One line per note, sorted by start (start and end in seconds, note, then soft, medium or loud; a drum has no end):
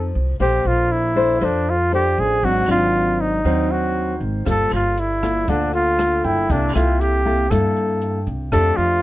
0.00 0.11 F2 medium
0.00 0.37 F3 soft
0.00 0.10 C4 medium
0.00 0.10 D#4 medium
0.00 0.11 A4 medium
0.00 0.12 A4 medium
0.15 0.38 C2 medium
0.39 0.63 A#1 medium
0.39 1.39 A#3 medium
0.39 1.12 D4 soft
0.39 0.69 G4 medium
0.39 1.12 A4 medium
0.39 1.12 C5 medium
0.65 1.37 A#1 medium
0.65 0.94 F4 medium
0.92 1.46 E4 loud
1.15 1.37 D4 medium
1.15 1.37 A4 medium
1.15 1.37 C5 medium
1.41 2.14 F2 medium
1.41 2.40 F3 soft
1.41 1.74 D4 soft
1.41 1.74 A4 medium
1.41 1.74 C5 medium
1.45 1.72 D4 medium
1.70 1.94 F4 medium
1.92 2.41 D4 medium
1.92 2.22 G4 medium
1.92 2.41 A4 medium
1.92 2.41 C5 medium
2.18 2.41 A1 medium
2.18 2.46 G#4 medium
2.43 2.66 G#1 medium
2.43 3.42 G#2 medium
2.43 2.64 F#3 medium
2.43 2.64 C4 medium
2.43 2.64 D4 medium
2.43 2.69 F#4 loud
2.68 3.40 G#1 medium
2.68 3.40 F#3 medium
2.68 3.40 C4 medium
2.68 3.40 D4 medium
2.68 3.23 F4 loud
3.21 3.73 D#4 medium
3.45 4.17 D#2 medium
3.45 4.44 D#3 medium
3.45 4.13 F#3 medium
3.45 4.13 C4 medium
3.45 4.13 D4 medium
3.45 4.68 C5 medium
3.71 4.22 F#4 medium
4.20 4.44 G#1 medium
4.45 4.70 G1 medium
4.45 5.45 G3 soft
4.45 4.96 A#3 soft
4.45 4.97 F4 soft
4.45 4.97 A4 medium
4.45 kick medium
4.45 cross-stick medium
4.45 closed hi-hat soft
4.50 4.72 A4 loud
4.72 5.44 G1 medium
4.72 5.01 F4 medium
4.72 closed hi-hat soft
4.97 5.51 E4 loud
4.97 closed hi-hat soft
5.22 5.44 A#3 medium
5.22 5.44 F4 soft
5.22 5.44 A4 medium
5.22 kick soft
5.22 cross-stick medium
5.22 closed hi-hat soft
5.48 6.20 D2 medium
5.48 6.47 D3 soft
5.48 5.95 A#3 soft
5.48 5.74 D4 medium
5.48 5.95 F4 medium
5.48 5.95 A4 medium
5.48 kick medium
5.48 closed hi-hat soft
5.73 6.27 F4 loud
5.73 closed hi-hat soft
5.99 6.47 A#3 medium
5.99 6.47 F4 soft
5.99 6.48 A4 soft
5.99 cross-stick medium
5.99 closed hi-hat soft
6.24 6.48 G1 medium
6.24 6.53 E4 medium
6.24 6.71 G5 soft
6.24 kick soft
6.24 closed hi-hat soft
6.50 6.73 C2 medium
6.50 7.49 C3 medium
6.50 6.71 A#3 medium
6.50 6.75 D4 medium
6.50 6.71 E4 medium
6.50 6.71 A4 soft
6.50 kick medium
6.50 closed hi-hat soft
6.75 7.47 C2 medium
6.75 7.22 A#3 medium
6.75 7.22 E4 medium
6.75 7.02 F4 medium
6.75 7.22 A4 medium
6.75 cross-stick medium
6.75 closed hi-hat soft
7.00 7.52 G4 loud
7.00 closed hi-hat soft
7.25 7.47 A#3 medium
7.25 7.47 E4 medium
7.25 7.47 A4 medium
7.25 kick soft
7.25 closed hi-hat soft
7.50 8.50 G2 soft
7.50 8.23 G2 medium
7.50 8.19 A#3 medium
7.50 8.19 E4 soft
7.50 8.27 A4 medium
7.50 8.19 A4 medium
7.50 kick medium
7.50 cross-stick medium
7.50 closed hi-hat soft
7.77 closed hi-hat soft
8.02 closed hi-hat soft
8.27 8.50 C2 medium
8.27 kick soft
8.27 closed hi-hat soft
8.52 8.76 F2 medium
8.52 9.02 F3 medium
8.52 9.02 A3 medium
8.52 9.02 D4 medium
8.52 9.02 G4 medium
8.52 8.78 A4 loud
8.52 kick medium
8.52 cross-stick medium
8.52 closed hi-hat soft
8.77 9.02 F2 medium
8.77 9.02 F4 medium
8.77 closed hi-hat soft